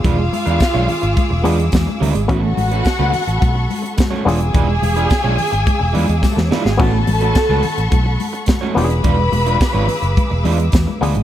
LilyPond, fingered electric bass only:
\new Staff \with { instrumentName = "Fingered electric bass" } { \clef bass \time 4/4 \key e \mixolydian \tempo 4 = 107 e,,8 r16 e,16 r16 b,,16 r16 gis,,16 r16 e,,16 e,8 e,16 r16 d,16 gis,,16 | a,,8 a,,8 r16 cis,16 r16 a,,16 b,,8 r4 e,,8 | e,,8 e,,8 r16 b,,16 r16 gis,,16 r16 e,,16 e,16 e,16 r16 e,16 r16 gis,,16 | a,,8 a,,8 r16 cis,16 r16 a,,16 b,,8 r4 e,,8 |
e,,8 e,,8 r16 gis,,16 r16 fis,,16 r16 e,,16 e,8 e,16 r16 d,16 gis,,16 | }